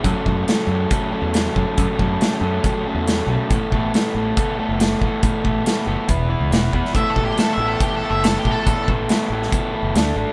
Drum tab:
HH |x---x---x---x---|x---x---x---x---|x---x---x---x---|x---x---x---x---|
SD |----o-------o---|----o-------o---|----o-------o---|----o-------o--o|
BD |o-o-----o-----o-|o-o-----o-------|o-o-----o-----o-|o-o-----o-----o-|

HH |x---x---x---x---|x---x---x---x---|
SD |----o-------o---|----o--o----o---|
BD |o-o-----o-----o-|o-o-----o-------|